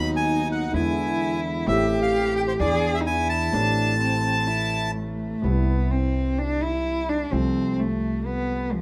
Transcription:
Already playing: upright bass D#2, grand piano D#2 D#3 F#3 B3 F#4, cello D#4, bandoneon B5
0.16 bandoneon G#5
0.52 bandoneon F#5
0.72 upright bass E2, grand piano E2 D3 E3 G#3 B3, cello E4, bandoneon G#5
0.76 grand piano E4
1.65 upright bass A1, grand piano A1 A2 E3 A3 C4, cello G4, bandoneon E5
1.69 grand piano G4
2.02 bandoneon F5
2.36 bandoneon G5
2.48 bandoneon C5
2.59 upright bass E2, grand piano E2 E3 B3 D4 G#4, cello G#4, bandoneon D5
2.94 bandoneon E5
3.01 cello D#4
3.07 cello E4, bandoneon G#5
3.29 bandoneon A5
3.50 grand piano A1 A2 E3 A3 C4, upright bass A1, cello D4
3.55 grand piano G4
4.00 cello C4
4.47 cello E4
4.96 cello A3
5.42 upright bass C2, grand piano C2 C3 G3 B4, cello B3
5.46 grand piano E4
5.91 cello C4
6.38 cello D4
6.62 cello E4
7.09 cello D4
7.30 upright bass C2, grand piano C2 C3 F3 A3, cello C4
7.34 grand piano F4
7.79 cello A3
8.26 cello B3
8.73 cello F3

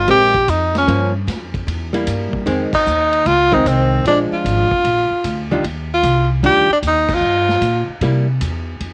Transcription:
0.08 upright bass A#1, hollow-body jazz guitar G#3 C4 G4 A#4, tenor saxophone G4, kick, ride
0.34 kick
0.48 upright bass F2, tenor saxophone D#4, kick, hi-hat pedal, ride
0.75 tenor saxophone C#4, snare, ride
0.87 upright bass G2, hollow-body jazz guitar F3 A#3 C#4, kick, ride
1.27 upright bass F2, kick, snare, hi-hat pedal, ride
1.54 kick, ride
1.67 upright bass E2, kick, ride
1.93 hollow-body jazz guitar G3 A#3 E4, ride
2.07 upright bass G2, kick, hi-hat pedal, ride
2.33 muted upright bass stroke, kick
2.46 upright bass F2, hollow-body jazz guitar D#3 G#3 C4, kick, ride
2.72 tenor saxophone D#4, muted upright bass stroke, kick, crash
2.86 upright bass D#2, hi-hat pedal
3.13 ride
3.25 upright bass C#2, tenor saxophone F4, kick, snare, ride
3.52 hollow-body jazz guitar D#3 G#3 C4, tenor saxophone D#4, kick
3.65 upright bass C2, tenor saxophone C4, kick, hi-hat pedal, ride
4.05 upright bass A#1, hollow-body jazz guitar F3 G#3 D4, tenor saxophone D4, kick, ride
4.31 tenor saxophone F4, muted upright bass stroke
4.44 upright bass G#1, kick, hi-hat pedal, ride
4.71 muted upright bass stroke, kick
4.84 upright bass A#1, kick, ride
5.10 muted upright bass stroke
5.24 upright bass D2, kick, hi-hat pedal, ride
5.51 hollow-body jazz guitar D#3 G3 D4 F4
5.63 upright bass D#2, kick, ride
5.94 tenor saxophone F4
6.03 upright bass C2, kick, hi-hat pedal, ride
6.43 upright bass D2, hollow-body jazz guitar D#3 G3 D4 F4, tenor saxophone G4, kick, ride
6.69 tenor saxophone D4, muted upright bass stroke
6.82 upright bass D#2, kick, hi-hat pedal, ride
6.87 tenor saxophone D#4
7.09 kick, crash
7.14 tenor saxophone F4
7.21 upright bass G2
7.49 snare
7.61 upright bass A#2, kick, hi-hat pedal, ride
7.88 muted upright bass stroke
8.01 upright bass C3, hollow-body jazz guitar G3 A#3 E4, kick, ride
8.41 upright bass E2, kick, hi-hat pedal, ride
8.80 upright bass F2, kick, ride

